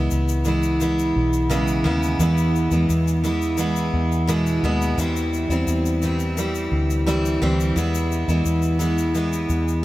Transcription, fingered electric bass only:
Already playing: C#2
0.12 C#2
1.16 B1
1.85 D#2
2.19 E2
2.71 E2
2.89 E2
3.94 E2
4.63 D#2
4.98 E2
5.49 E2
5.67 E2
6.72 D2
7.42 D2
7.76 E2
8.28 E2
8.45 E2
9.50 E2

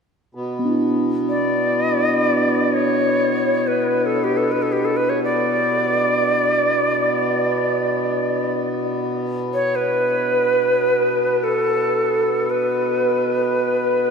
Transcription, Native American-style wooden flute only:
1.29 D5
1.79 D#5
1.93 D5
2.08 D#5
2.21 D5
2.74 C#5
3.67 B4
4.06 A4
4.24 G4
4.37 A4
4.52 B4
4.62 A4
4.72 G4
4.85 A4
4.97 B4
5.10 C#5
5.24 D5
9.54 C#5
9.75 B4
11.43 A4
12.50 B4

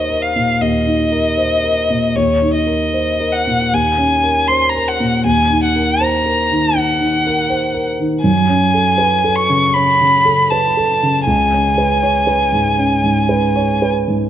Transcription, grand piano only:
Already playing: D#2 D#4 A#4 C5
0.09 A#4
0.36 A#2
0.61 D#2
0.86 D#4
1.12 A#4
1.37 C5
1.64 A#4
1.90 A#2
2.16 D#2
2.42 D#4
2.66 A#4
2.93 C5
3.20 A#4
3.47 A#2
3.73 D#2
3.98 C#4
4.23 A#4
4.49 C5
4.75 A#4
5.00 A#2
5.25 D#2
5.50 D#4
5.76 A#4
6.00 C5
6.26 A#4
6.51 D#3
6.75 D#4
7.01 D#3
7.27 A#4
7.49 C5
7.74 A#4
7.99 D#3
8.24 F#2
8.49 C#4
8.74 A4
8.98 B4
9.24 A4
9.49 C#3
9.75 C#4
10.01 C#3
10.25 A4
10.52 B4
10.77 A4
11.03 C#3
11.27 C#2
11.53 C#4
11.78 B4
12.03 C#5
12.27 B4
12.52 G#2
12.78 C#4
13.03 G#2
13.29 B4
13.56 C#5
13.82 B4
14.08 G#2

